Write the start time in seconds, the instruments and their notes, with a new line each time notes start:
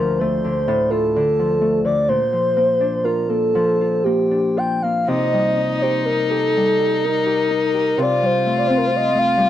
Already playing: harp D2 D3 F3, soft synth lead A#4
0.19 harp A3, soft synth lead C5
0.44 harp D3
0.68 harp A2
0.90 harp F4, soft synth lead A4
1.14 harp D3, soft synth lead A4
1.39 harp F3
1.61 harp A3
1.85 harp D3, soft synth lead D5
2.08 harp A#2, soft synth lead C5
2.33 harp F3
2.57 harp A#3
2.81 harp D4
3.04 harp F4, soft synth lead A#4
3.29 harp A#3, soft synth lead A4
3.55 harp F3
3.81 harp F4
4.04 harp A#3, soft synth lead G4
4.31 harp D4
4.57 harp F4, soft synth lead G5
4.82 harp A#3, soft synth lead F5
5.07 harp C3, fiddle D#4, soft synth lead D#5
5.33 harp G3
5.57 harp D#4
5.82 harp G4, soft synth lead C5
5.99 soft synth lead C5
6.05 harp D#4, soft synth lead A#4
6.30 harp G4, soft synth lead A4
6.57 harp G3
6.79 harp G4
7.04 harp D#4, soft synth lead A#4
7.26 harp G4
7.51 harp D#4
7.74 harp G4
7.98 harp C3, fiddle F4
8.02 soft synth lead D5
8.22 harp G3, soft synth lead C5
8.46 harp A3
8.59 soft synth lead D5
8.67 harp C4, soft synth lead C5
8.78 soft synth lead A#4
8.86 soft synth lead C5
8.91 harp F4
8.96 soft synth lead D#5
9.14 harp A3, soft synth lead F5
9.37 harp G3